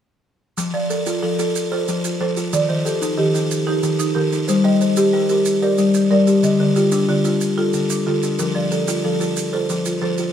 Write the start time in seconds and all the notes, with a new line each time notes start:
0.58 F3, maracas
0.74 F3 D5
0.90 A4 A#4, maracas
1.06 F4, maracas
1.23 F3 A4
1.39 F4 A4, maracas
1.56 maracas
1.72 F4 A4 C5
1.88 F3, maracas
2.04 F4, maracas
2.21 F3 A4 C5
2.37 F4, maracas
2.53 D#3 D5, maracas
2.69 D#3 C5
2.85 G4 A4, maracas
3.02 D#4, maracas
3.18 D#3 G4
3.34 D#4 G4, maracas
3.51 maracas
3.67 D#4 G4 A#4
3.83 D#3, maracas
3.99 D#4, maracas
4.15 D#3 G4 A#4
4.32 D#4, maracas
4.48 G3 C5, maracas
4.64 G3 D#5
4.81 C5, maracas
4.96 G4, maracas
5.13 G3 A#4
5.29 G4 A#4, maracas
5.45 maracas
5.62 G4 A#4 D5
5.78 G3, maracas
5.94 G4, maracas
6.11 G3 A#4 D5
6.27 G4, maracas
6.43 D3 D#5, maracas
6.59 D3 A#4
6.76 F4 G4, maracas
6.92 D4, maracas
7.08 D3 F4
7.25 D4 F4, maracas
7.41 maracas
7.58 F4 A4
7.73 D3, maracas
7.90 D4, maracas
8.06 D3 F4 A4
8.23 D4, maracas
8.39 F3 A#4, maracas
8.55 F3 D5
8.71 A4 A#4, maracas
8.88 F4, maracas
9.04 F3 A4
9.20 F4 A4, maracas
9.36 maracas
9.53 F4 A4 C5
9.69 F3, maracas
9.85 F4, maracas
10.02 F3 A4 C5
10.18 F4, maracas